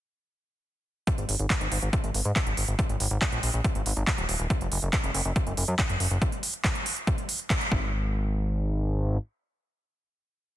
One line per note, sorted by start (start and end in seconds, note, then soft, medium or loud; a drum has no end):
1.07 kick loud
1.07 closed hi-hat medium
1.18 1.25 G#1 medium
1.18 closed hi-hat soft
1.29 1.35 G#1 loud
1.29 open hi-hat loud
1.39 1.46 G#1 medium
1.39 closed hi-hat soft
1.50 kick loud
1.50 clap loud
1.50 closed hi-hat medium
1.61 1.68 G#1 medium
1.61 closed hi-hat soft
1.72 1.78 G#1 loud
1.72 open hi-hat loud
1.82 1.89 G#1 medium
1.82 closed hi-hat soft
1.93 kick loud
1.93 closed hi-hat medium
2.04 2.10 G#1 medium
2.04 closed hi-hat soft
2.14 2.21 G#1 medium
2.14 open hi-hat loud
2.25 2.32 G#2 medium
2.25 closed hi-hat soft
2.36 kick loud
2.36 clap loud
2.36 closed hi-hat medium
2.47 2.53 G#1 medium
2.47 closed hi-hat soft
2.57 2.64 G#1 loud
2.57 open hi-hat loud
2.68 2.75 G#1 medium
2.68 closed hi-hat soft
2.79 kick loud
2.79 closed hi-hat medium
2.89 2.96 G#1 medium
2.89 closed hi-hat soft
3.00 3.07 G#1 loud
3.00 open hi-hat loud
3.11 3.18 G#1 medium
3.11 closed hi-hat soft
3.22 kick loud
3.22 clap loud
3.22 closed hi-hat medium
3.32 3.39 A#1 medium
3.32 closed hi-hat soft
3.43 3.50 A#1 loud
3.43 open hi-hat loud
3.54 3.60 A#1 medium
3.54 closed hi-hat soft
3.64 kick loud
3.64 closed hi-hat medium
3.75 3.82 G#1 medium
3.75 closed hi-hat soft
3.86 3.93 G#1 loud
3.86 open hi-hat loud
3.97 4.03 G#1 medium
3.97 closed hi-hat soft
4.07 kick loud
4.07 clap loud
4.07 closed hi-hat medium
4.18 4.25 D#1 medium
4.18 closed hi-hat soft
4.29 4.35 D#1 loud
4.29 open hi-hat loud
4.39 4.46 D#1 medium
4.39 closed hi-hat soft
4.50 kick loud
4.50 closed hi-hat medium
4.61 4.68 F#1 medium
4.61 closed hi-hat soft
4.72 4.78 F#1 loud
4.72 open hi-hat loud
4.82 4.89 F#1 medium
4.82 closed hi-hat soft
4.93 kick loud
4.93 clap loud
4.93 closed hi-hat medium
5.04 5.10 F#1 medium
5.04 closed hi-hat soft
5.14 5.21 F#1 loud
5.14 open hi-hat loud
5.25 5.32 F#1 medium
5.25 closed hi-hat soft
5.36 kick loud
5.36 closed hi-hat medium
5.47 5.53 F#1 medium
5.47 closed hi-hat soft
5.57 5.64 F#1 loud
5.57 open hi-hat loud
5.68 5.75 F#2 loud
5.68 closed hi-hat soft
5.79 kick loud
5.79 clap loud
5.79 closed hi-hat medium
5.89 5.96 F#1 medium
5.89 closed hi-hat soft
6.00 6.07 F#1 loud
6.00 open hi-hat loud
6.11 6.17 F#1 medium
6.11 closed hi-hat soft
6.22 kick loud
6.22 closed hi-hat medium
6.32 closed hi-hat soft
6.43 open hi-hat loud
6.54 closed hi-hat soft
6.64 kick loud
6.64 clap loud
6.64 closed hi-hat medium
6.75 closed hi-hat soft
6.86 open hi-hat loud
6.97 closed hi-hat soft
7.07 kick loud
7.07 closed hi-hat medium
7.18 closed hi-hat soft
7.29 open hi-hat loud
7.39 closed hi-hat soft
7.50 kick loud
7.50 clap loud
7.50 closed hi-hat medium
7.61 closed hi-hat soft
7.72 9.18 G#1 loud
7.72 kick loud